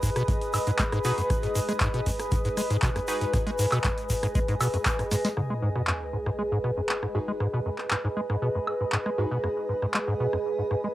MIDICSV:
0, 0, Header, 1, 7, 480
1, 0, Start_track
1, 0, Key_signature, 5, "minor"
1, 0, Tempo, 508475
1, 1228, Time_signature, 4, 2, 24, 8
1, 10330, End_track
2, 0, Start_track
2, 0, Title_t, "Ambient pad"
2, 0, Program_c, 0, 92
2, 0, Note_on_c, 0, 68, 79
2, 0, Note_on_c, 0, 75, 96
2, 0, Note_on_c, 0, 80, 76
2, 0, Note_on_c, 0, 87, 95
2, 5058, Note_off_c, 0, 68, 0
2, 5067, Note_off_c, 0, 80, 0
2, 5068, Note_off_c, 0, 75, 0
2, 5070, Note_on_c, 0, 68, 78
2, 5093, Note_off_c, 0, 87, 0
2, 5263, Note_on_c, 0, 80, 72
2, 5480, Note_on_c, 0, 75, 79
2, 6303, Note_on_c, 0, 83, 79
2, 10330, Note_off_c, 0, 68, 0
2, 10330, Note_off_c, 0, 75, 0
2, 10330, Note_off_c, 0, 80, 0
2, 10330, Note_off_c, 0, 83, 0
2, 10330, End_track
3, 0, Start_track
3, 0, Title_t, "Ambient pad"
3, 0, Program_c, 1, 92
3, 0, Note_on_c, 1, 71, 85
3, 5057, Note_off_c, 1, 71, 0
3, 5069, Note_on_c, 1, 71, 83
3, 10330, Note_off_c, 1, 71, 0
3, 10330, End_track
4, 0, Start_track
4, 0, Title_t, "Synth stab"
4, 0, Program_c, 2, 62
4, 0, Note_on_c, 2, 63, 87
4, 0, Note_on_c, 2, 66, 81
4, 0, Note_on_c, 2, 68, 82
4, 0, Note_on_c, 2, 71, 97
4, 960, Note_off_c, 2, 68, 0
4, 960, Note_off_c, 2, 71, 0
4, 961, Note_off_c, 2, 63, 0
4, 961, Note_off_c, 2, 66, 0
4, 988, Note_on_c, 2, 63, 89
4, 988, Note_on_c, 2, 66, 82
4, 988, Note_on_c, 2, 68, 81
4, 988, Note_on_c, 2, 71, 98
4, 2880, Note_off_c, 2, 63, 0
4, 2880, Note_off_c, 2, 66, 0
4, 2880, Note_off_c, 2, 68, 0
4, 2880, Note_off_c, 2, 71, 0
4, 2908, Note_on_c, 2, 63, 93
4, 2908, Note_on_c, 2, 66, 81
4, 2908, Note_on_c, 2, 68, 80
4, 2908, Note_on_c, 2, 71, 97
4, 4800, Note_off_c, 2, 63, 0
4, 4800, Note_off_c, 2, 66, 0
4, 4800, Note_off_c, 2, 68, 0
4, 4800, Note_off_c, 2, 71, 0
4, 6748, Note_on_c, 2, 63, 85
4, 6748, Note_on_c, 2, 66, 76
4, 6748, Note_on_c, 2, 68, 76
4, 6748, Note_on_c, 2, 71, 91
4, 8640, Note_off_c, 2, 63, 0
4, 8640, Note_off_c, 2, 66, 0
4, 8640, Note_off_c, 2, 68, 0
4, 8640, Note_off_c, 2, 71, 0
4, 8668, Note_on_c, 2, 63, 81
4, 8668, Note_on_c, 2, 66, 77
4, 8668, Note_on_c, 2, 68, 74
4, 8668, Note_on_c, 2, 71, 96
4, 10330, Note_off_c, 2, 63, 0
4, 10330, Note_off_c, 2, 66, 0
4, 10330, Note_off_c, 2, 68, 0
4, 10330, Note_off_c, 2, 71, 0
4, 10330, End_track
5, 0, Start_track
5, 0, Title_t, "Acid bass"
5, 0, Program_c, 3, 38
5, 27, Note_on_c, 3, 44, 107
5, 96, Note_off_c, 3, 44, 0
5, 152, Note_on_c, 3, 47, 106
5, 216, Note_off_c, 3, 47, 0
5, 268, Note_on_c, 3, 42, 85
5, 309, Note_off_c, 3, 42, 0
5, 508, Note_on_c, 3, 44, 76
5, 549, Note_off_c, 3, 44, 0
5, 632, Note_on_c, 3, 44, 103
5, 671, Note_off_c, 3, 44, 0
5, 748, Note_on_c, 3, 56, 102
5, 789, Note_off_c, 3, 56, 0
5, 873, Note_on_c, 3, 44, 107
5, 936, Note_off_c, 3, 44, 0
5, 988, Note_on_c, 3, 47, 104
5, 1057, Note_off_c, 3, 47, 0
5, 1113, Note_on_c, 3, 42, 76
5, 1151, Note_off_c, 3, 42, 0
5, 1352, Note_on_c, 3, 44, 77
5, 1391, Note_off_c, 3, 44, 0
5, 1468, Note_on_c, 3, 44, 102
5, 1509, Note_off_c, 3, 44, 0
5, 1592, Note_on_c, 3, 56, 96
5, 1631, Note_off_c, 3, 56, 0
5, 1707, Note_on_c, 3, 44, 100
5, 1776, Note_off_c, 3, 44, 0
5, 1832, Note_on_c, 3, 47, 110
5, 1896, Note_off_c, 3, 47, 0
5, 1948, Note_on_c, 3, 42, 81
5, 1989, Note_off_c, 3, 42, 0
5, 2188, Note_on_c, 3, 44, 83
5, 2229, Note_off_c, 3, 44, 0
5, 2312, Note_on_c, 3, 44, 105
5, 2350, Note_off_c, 3, 44, 0
5, 2428, Note_on_c, 3, 56, 105
5, 2469, Note_off_c, 3, 56, 0
5, 2552, Note_on_c, 3, 44, 103
5, 2616, Note_off_c, 3, 44, 0
5, 2667, Note_on_c, 3, 47, 106
5, 2736, Note_off_c, 3, 47, 0
5, 2792, Note_on_c, 3, 42, 78
5, 2831, Note_off_c, 3, 42, 0
5, 3033, Note_on_c, 3, 44, 77
5, 3071, Note_off_c, 3, 44, 0
5, 3148, Note_on_c, 3, 44, 105
5, 3189, Note_off_c, 3, 44, 0
5, 3273, Note_on_c, 3, 56, 109
5, 3311, Note_off_c, 3, 56, 0
5, 3388, Note_on_c, 3, 44, 102
5, 3457, Note_off_c, 3, 44, 0
5, 3513, Note_on_c, 3, 47, 99
5, 3576, Note_off_c, 3, 47, 0
5, 3628, Note_on_c, 3, 42, 83
5, 3669, Note_off_c, 3, 42, 0
5, 3868, Note_on_c, 3, 44, 79
5, 3909, Note_off_c, 3, 44, 0
5, 3993, Note_on_c, 3, 44, 102
5, 4031, Note_off_c, 3, 44, 0
5, 4108, Note_on_c, 3, 56, 106
5, 4149, Note_off_c, 3, 56, 0
5, 4232, Note_on_c, 3, 44, 101
5, 4296, Note_off_c, 3, 44, 0
5, 4348, Note_on_c, 3, 47, 101
5, 4417, Note_off_c, 3, 47, 0
5, 4472, Note_on_c, 3, 42, 79
5, 4510, Note_off_c, 3, 42, 0
5, 4712, Note_on_c, 3, 44, 81
5, 4750, Note_off_c, 3, 44, 0
5, 4828, Note_on_c, 3, 44, 104
5, 4869, Note_off_c, 3, 44, 0
5, 4952, Note_on_c, 3, 56, 103
5, 4990, Note_off_c, 3, 56, 0
5, 5068, Note_on_c, 3, 44, 99
5, 5109, Note_off_c, 3, 44, 0
5, 5192, Note_on_c, 3, 56, 100
5, 5231, Note_off_c, 3, 56, 0
5, 5308, Note_on_c, 3, 44, 96
5, 5377, Note_off_c, 3, 44, 0
5, 5432, Note_on_c, 3, 47, 93
5, 5496, Note_off_c, 3, 47, 0
5, 5548, Note_on_c, 3, 42, 80
5, 5589, Note_off_c, 3, 42, 0
5, 5788, Note_on_c, 3, 44, 75
5, 5829, Note_off_c, 3, 44, 0
5, 5912, Note_on_c, 3, 44, 97
5, 5950, Note_off_c, 3, 44, 0
5, 6028, Note_on_c, 3, 56, 96
5, 6069, Note_off_c, 3, 56, 0
5, 6153, Note_on_c, 3, 44, 96
5, 6216, Note_off_c, 3, 44, 0
5, 6268, Note_on_c, 3, 47, 95
5, 6337, Note_off_c, 3, 47, 0
5, 6392, Note_on_c, 3, 42, 75
5, 6431, Note_off_c, 3, 42, 0
5, 6633, Note_on_c, 3, 44, 75
5, 6671, Note_off_c, 3, 44, 0
5, 6748, Note_on_c, 3, 44, 100
5, 6789, Note_off_c, 3, 44, 0
5, 6872, Note_on_c, 3, 56, 96
5, 6911, Note_off_c, 3, 56, 0
5, 6988, Note_on_c, 3, 44, 95
5, 7057, Note_off_c, 3, 44, 0
5, 7113, Note_on_c, 3, 47, 99
5, 7176, Note_off_c, 3, 47, 0
5, 7228, Note_on_c, 3, 42, 72
5, 7269, Note_off_c, 3, 42, 0
5, 7468, Note_on_c, 3, 44, 77
5, 7509, Note_off_c, 3, 44, 0
5, 7593, Note_on_c, 3, 44, 99
5, 7631, Note_off_c, 3, 44, 0
5, 7708, Note_on_c, 3, 56, 102
5, 7749, Note_off_c, 3, 56, 0
5, 7833, Note_on_c, 3, 44, 97
5, 7896, Note_off_c, 3, 44, 0
5, 7948, Note_on_c, 3, 47, 98
5, 8017, Note_off_c, 3, 47, 0
5, 8073, Note_on_c, 3, 42, 72
5, 8111, Note_off_c, 3, 42, 0
5, 8313, Note_on_c, 3, 44, 74
5, 8351, Note_off_c, 3, 44, 0
5, 8428, Note_on_c, 3, 44, 96
5, 8469, Note_off_c, 3, 44, 0
5, 8552, Note_on_c, 3, 56, 101
5, 8591, Note_off_c, 3, 56, 0
5, 8668, Note_on_c, 3, 44, 99
5, 8736, Note_off_c, 3, 44, 0
5, 8792, Note_on_c, 3, 47, 102
5, 8856, Note_off_c, 3, 47, 0
5, 8908, Note_on_c, 3, 42, 81
5, 8949, Note_off_c, 3, 42, 0
5, 9148, Note_on_c, 3, 44, 74
5, 9189, Note_off_c, 3, 44, 0
5, 9273, Note_on_c, 3, 44, 92
5, 9311, Note_off_c, 3, 44, 0
5, 9388, Note_on_c, 3, 56, 93
5, 9429, Note_off_c, 3, 56, 0
5, 9513, Note_on_c, 3, 44, 97
5, 9576, Note_off_c, 3, 44, 0
5, 9628, Note_on_c, 3, 47, 101
5, 9697, Note_off_c, 3, 47, 0
5, 9753, Note_on_c, 3, 42, 71
5, 9791, Note_off_c, 3, 42, 0
5, 9993, Note_on_c, 3, 44, 75
5, 10031, Note_off_c, 3, 44, 0
5, 10109, Note_on_c, 3, 44, 100
5, 10149, Note_off_c, 3, 44, 0
5, 10233, Note_on_c, 3, 56, 96
5, 10271, Note_off_c, 3, 56, 0
5, 10330, End_track
6, 0, Start_track
6, 0, Title_t, "Sub drop"
6, 0, Program_c, 4, 103
6, 5068, Note_on_c, 4, 60, 69
6, 6988, Note_off_c, 4, 60, 0
6, 10330, End_track
7, 0, Start_track
7, 0, Title_t, "Drums"
7, 28, Note_on_c, 9, 36, 58
7, 28, Note_on_c, 9, 46, 90
7, 28, Note_on_c, 9, 82, 89
7, 122, Note_off_c, 9, 36, 0
7, 122, Note_off_c, 9, 46, 0
7, 123, Note_off_c, 9, 82, 0
7, 151, Note_on_c, 9, 82, 39
7, 152, Note_on_c, 9, 37, 65
7, 152, Note_on_c, 9, 42, 53
7, 245, Note_off_c, 9, 82, 0
7, 247, Note_off_c, 9, 37, 0
7, 247, Note_off_c, 9, 42, 0
7, 268, Note_on_c, 9, 36, 114
7, 268, Note_on_c, 9, 42, 77
7, 275, Note_on_c, 9, 82, 47
7, 362, Note_off_c, 9, 36, 0
7, 362, Note_off_c, 9, 42, 0
7, 369, Note_off_c, 9, 82, 0
7, 392, Note_on_c, 9, 42, 36
7, 393, Note_on_c, 9, 82, 26
7, 487, Note_off_c, 9, 42, 0
7, 487, Note_off_c, 9, 82, 0
7, 503, Note_on_c, 9, 82, 88
7, 508, Note_on_c, 9, 37, 43
7, 508, Note_on_c, 9, 46, 101
7, 508, Note_on_c, 9, 76, 81
7, 597, Note_off_c, 9, 82, 0
7, 602, Note_off_c, 9, 37, 0
7, 602, Note_off_c, 9, 46, 0
7, 602, Note_off_c, 9, 76, 0
7, 630, Note_on_c, 9, 82, 37
7, 632, Note_on_c, 9, 42, 54
7, 725, Note_off_c, 9, 82, 0
7, 727, Note_off_c, 9, 42, 0
7, 742, Note_on_c, 9, 39, 117
7, 747, Note_on_c, 9, 42, 81
7, 748, Note_on_c, 9, 36, 117
7, 748, Note_on_c, 9, 82, 48
7, 836, Note_off_c, 9, 39, 0
7, 842, Note_off_c, 9, 36, 0
7, 842, Note_off_c, 9, 42, 0
7, 842, Note_off_c, 9, 82, 0
7, 871, Note_on_c, 9, 82, 27
7, 872, Note_on_c, 9, 37, 64
7, 872, Note_on_c, 9, 42, 37
7, 965, Note_off_c, 9, 82, 0
7, 967, Note_off_c, 9, 37, 0
7, 967, Note_off_c, 9, 42, 0
7, 984, Note_on_c, 9, 82, 83
7, 988, Note_on_c, 9, 46, 93
7, 1078, Note_off_c, 9, 82, 0
7, 1082, Note_off_c, 9, 46, 0
7, 1112, Note_on_c, 9, 42, 52
7, 1115, Note_on_c, 9, 82, 40
7, 1207, Note_off_c, 9, 42, 0
7, 1209, Note_off_c, 9, 82, 0
7, 1228, Note_on_c, 9, 36, 117
7, 1228, Note_on_c, 9, 37, 60
7, 1228, Note_on_c, 9, 42, 81
7, 1231, Note_on_c, 9, 82, 51
7, 1322, Note_off_c, 9, 36, 0
7, 1322, Note_off_c, 9, 37, 0
7, 1322, Note_off_c, 9, 42, 0
7, 1326, Note_off_c, 9, 82, 0
7, 1347, Note_on_c, 9, 82, 23
7, 1353, Note_on_c, 9, 42, 38
7, 1442, Note_off_c, 9, 82, 0
7, 1447, Note_off_c, 9, 42, 0
7, 1468, Note_on_c, 9, 46, 102
7, 1468, Note_on_c, 9, 82, 90
7, 1562, Note_off_c, 9, 46, 0
7, 1563, Note_off_c, 9, 82, 0
7, 1592, Note_on_c, 9, 37, 41
7, 1592, Note_on_c, 9, 42, 55
7, 1594, Note_on_c, 9, 82, 42
7, 1687, Note_off_c, 9, 37, 0
7, 1687, Note_off_c, 9, 42, 0
7, 1688, Note_off_c, 9, 82, 0
7, 1702, Note_on_c, 9, 39, 118
7, 1707, Note_on_c, 9, 42, 83
7, 1707, Note_on_c, 9, 82, 46
7, 1708, Note_on_c, 9, 36, 108
7, 1796, Note_off_c, 9, 39, 0
7, 1802, Note_off_c, 9, 42, 0
7, 1802, Note_off_c, 9, 82, 0
7, 1803, Note_off_c, 9, 36, 0
7, 1831, Note_on_c, 9, 82, 27
7, 1832, Note_on_c, 9, 42, 39
7, 1925, Note_off_c, 9, 82, 0
7, 1927, Note_off_c, 9, 42, 0
7, 1947, Note_on_c, 9, 46, 93
7, 1948, Note_on_c, 9, 36, 58
7, 1953, Note_on_c, 9, 82, 88
7, 2042, Note_off_c, 9, 46, 0
7, 2043, Note_off_c, 9, 36, 0
7, 2047, Note_off_c, 9, 82, 0
7, 2068, Note_on_c, 9, 82, 39
7, 2072, Note_on_c, 9, 37, 62
7, 2072, Note_on_c, 9, 42, 57
7, 2163, Note_off_c, 9, 82, 0
7, 2167, Note_off_c, 9, 37, 0
7, 2167, Note_off_c, 9, 42, 0
7, 2185, Note_on_c, 9, 82, 53
7, 2188, Note_on_c, 9, 36, 112
7, 2188, Note_on_c, 9, 42, 86
7, 2280, Note_off_c, 9, 82, 0
7, 2282, Note_off_c, 9, 42, 0
7, 2283, Note_off_c, 9, 36, 0
7, 2308, Note_on_c, 9, 82, 25
7, 2312, Note_on_c, 9, 42, 39
7, 2403, Note_off_c, 9, 82, 0
7, 2407, Note_off_c, 9, 42, 0
7, 2428, Note_on_c, 9, 37, 39
7, 2428, Note_on_c, 9, 46, 101
7, 2433, Note_on_c, 9, 82, 99
7, 2522, Note_off_c, 9, 37, 0
7, 2522, Note_off_c, 9, 46, 0
7, 2527, Note_off_c, 9, 82, 0
7, 2552, Note_on_c, 9, 42, 56
7, 2558, Note_on_c, 9, 82, 36
7, 2647, Note_off_c, 9, 42, 0
7, 2652, Note_off_c, 9, 82, 0
7, 2662, Note_on_c, 9, 39, 121
7, 2668, Note_on_c, 9, 36, 112
7, 2668, Note_on_c, 9, 42, 83
7, 2676, Note_on_c, 9, 82, 48
7, 2757, Note_off_c, 9, 39, 0
7, 2762, Note_off_c, 9, 42, 0
7, 2763, Note_off_c, 9, 36, 0
7, 2770, Note_off_c, 9, 82, 0
7, 2792, Note_on_c, 9, 37, 61
7, 2792, Note_on_c, 9, 42, 38
7, 2795, Note_on_c, 9, 82, 27
7, 2887, Note_off_c, 9, 37, 0
7, 2887, Note_off_c, 9, 42, 0
7, 2889, Note_off_c, 9, 82, 0
7, 2906, Note_on_c, 9, 82, 97
7, 2908, Note_on_c, 9, 46, 85
7, 3001, Note_off_c, 9, 82, 0
7, 3002, Note_off_c, 9, 46, 0
7, 3028, Note_on_c, 9, 82, 34
7, 3033, Note_on_c, 9, 42, 54
7, 3123, Note_off_c, 9, 82, 0
7, 3127, Note_off_c, 9, 42, 0
7, 3148, Note_on_c, 9, 36, 116
7, 3148, Note_on_c, 9, 37, 60
7, 3148, Note_on_c, 9, 42, 85
7, 3153, Note_on_c, 9, 82, 56
7, 3242, Note_off_c, 9, 36, 0
7, 3242, Note_off_c, 9, 37, 0
7, 3242, Note_off_c, 9, 42, 0
7, 3247, Note_off_c, 9, 82, 0
7, 3272, Note_on_c, 9, 42, 40
7, 3272, Note_on_c, 9, 82, 24
7, 3367, Note_off_c, 9, 42, 0
7, 3367, Note_off_c, 9, 82, 0
7, 3386, Note_on_c, 9, 82, 90
7, 3388, Note_on_c, 9, 46, 106
7, 3481, Note_off_c, 9, 82, 0
7, 3483, Note_off_c, 9, 46, 0
7, 3506, Note_on_c, 9, 82, 41
7, 3507, Note_on_c, 9, 39, 37
7, 3513, Note_on_c, 9, 37, 42
7, 3513, Note_on_c, 9, 42, 57
7, 3513, Note_on_c, 9, 76, 89
7, 3600, Note_off_c, 9, 82, 0
7, 3602, Note_off_c, 9, 39, 0
7, 3607, Note_off_c, 9, 37, 0
7, 3607, Note_off_c, 9, 42, 0
7, 3607, Note_off_c, 9, 76, 0
7, 3623, Note_on_c, 9, 39, 125
7, 3626, Note_on_c, 9, 82, 48
7, 3628, Note_on_c, 9, 36, 116
7, 3628, Note_on_c, 9, 42, 81
7, 3717, Note_off_c, 9, 39, 0
7, 3720, Note_off_c, 9, 82, 0
7, 3722, Note_off_c, 9, 36, 0
7, 3723, Note_off_c, 9, 42, 0
7, 3753, Note_on_c, 9, 42, 41
7, 3757, Note_on_c, 9, 82, 25
7, 3847, Note_off_c, 9, 42, 0
7, 3852, Note_off_c, 9, 82, 0
7, 3866, Note_on_c, 9, 82, 101
7, 3868, Note_on_c, 9, 36, 54
7, 3868, Note_on_c, 9, 46, 92
7, 3960, Note_off_c, 9, 82, 0
7, 3962, Note_off_c, 9, 36, 0
7, 3963, Note_off_c, 9, 46, 0
7, 3993, Note_on_c, 9, 37, 60
7, 3993, Note_on_c, 9, 42, 57
7, 3999, Note_on_c, 9, 82, 38
7, 4087, Note_off_c, 9, 37, 0
7, 4087, Note_off_c, 9, 42, 0
7, 4093, Note_off_c, 9, 82, 0
7, 4108, Note_on_c, 9, 36, 118
7, 4108, Note_on_c, 9, 42, 83
7, 4108, Note_on_c, 9, 82, 55
7, 4202, Note_off_c, 9, 36, 0
7, 4202, Note_off_c, 9, 42, 0
7, 4202, Note_off_c, 9, 82, 0
7, 4233, Note_on_c, 9, 42, 39
7, 4235, Note_on_c, 9, 82, 23
7, 4327, Note_off_c, 9, 42, 0
7, 4329, Note_off_c, 9, 82, 0
7, 4348, Note_on_c, 9, 37, 40
7, 4348, Note_on_c, 9, 46, 108
7, 4348, Note_on_c, 9, 76, 80
7, 4350, Note_on_c, 9, 82, 94
7, 4443, Note_off_c, 9, 37, 0
7, 4443, Note_off_c, 9, 46, 0
7, 4443, Note_off_c, 9, 76, 0
7, 4445, Note_off_c, 9, 82, 0
7, 4468, Note_on_c, 9, 82, 35
7, 4473, Note_on_c, 9, 42, 56
7, 4562, Note_off_c, 9, 82, 0
7, 4567, Note_off_c, 9, 42, 0
7, 4583, Note_on_c, 9, 39, 125
7, 4588, Note_on_c, 9, 36, 117
7, 4588, Note_on_c, 9, 42, 86
7, 4588, Note_on_c, 9, 82, 58
7, 4677, Note_off_c, 9, 39, 0
7, 4683, Note_off_c, 9, 36, 0
7, 4683, Note_off_c, 9, 42, 0
7, 4683, Note_off_c, 9, 82, 0
7, 4713, Note_on_c, 9, 37, 58
7, 4713, Note_on_c, 9, 42, 40
7, 4717, Note_on_c, 9, 82, 26
7, 4807, Note_off_c, 9, 37, 0
7, 4807, Note_off_c, 9, 42, 0
7, 4811, Note_off_c, 9, 82, 0
7, 4828, Note_on_c, 9, 38, 62
7, 4828, Note_on_c, 9, 46, 92
7, 4828, Note_on_c, 9, 82, 89
7, 4922, Note_off_c, 9, 38, 0
7, 4922, Note_off_c, 9, 46, 0
7, 4923, Note_off_c, 9, 82, 0
7, 4953, Note_on_c, 9, 38, 72
7, 4953, Note_on_c, 9, 42, 55
7, 4954, Note_on_c, 9, 82, 38
7, 5047, Note_off_c, 9, 38, 0
7, 5047, Note_off_c, 9, 42, 0
7, 5049, Note_off_c, 9, 82, 0
7, 5068, Note_on_c, 9, 37, 51
7, 5163, Note_off_c, 9, 37, 0
7, 5433, Note_on_c, 9, 37, 35
7, 5527, Note_off_c, 9, 37, 0
7, 5543, Note_on_c, 9, 39, 114
7, 5637, Note_off_c, 9, 39, 0
7, 5913, Note_on_c, 9, 37, 54
7, 6007, Note_off_c, 9, 37, 0
7, 6268, Note_on_c, 9, 37, 35
7, 6363, Note_off_c, 9, 37, 0
7, 6503, Note_on_c, 9, 39, 117
7, 6597, Note_off_c, 9, 39, 0
7, 6633, Note_on_c, 9, 37, 53
7, 6727, Note_off_c, 9, 37, 0
7, 6988, Note_on_c, 9, 37, 49
7, 7083, Note_off_c, 9, 37, 0
7, 7347, Note_on_c, 9, 39, 35
7, 7353, Note_on_c, 9, 37, 34
7, 7442, Note_off_c, 9, 39, 0
7, 7447, Note_off_c, 9, 37, 0
7, 7463, Note_on_c, 9, 39, 112
7, 7557, Note_off_c, 9, 39, 0
7, 7833, Note_on_c, 9, 37, 53
7, 7927, Note_off_c, 9, 37, 0
7, 8188, Note_on_c, 9, 37, 35
7, 8188, Note_on_c, 9, 76, 72
7, 8283, Note_off_c, 9, 37, 0
7, 8283, Note_off_c, 9, 76, 0
7, 8423, Note_on_c, 9, 39, 115
7, 8517, Note_off_c, 9, 39, 0
7, 8553, Note_on_c, 9, 37, 52
7, 8647, Note_off_c, 9, 37, 0
7, 8908, Note_on_c, 9, 37, 54
7, 9003, Note_off_c, 9, 37, 0
7, 9273, Note_on_c, 9, 37, 37
7, 9367, Note_off_c, 9, 37, 0
7, 9383, Note_on_c, 9, 39, 109
7, 9477, Note_off_c, 9, 39, 0
7, 9753, Note_on_c, 9, 37, 54
7, 9847, Note_off_c, 9, 37, 0
7, 10108, Note_on_c, 9, 37, 35
7, 10203, Note_off_c, 9, 37, 0
7, 10330, End_track
0, 0, End_of_file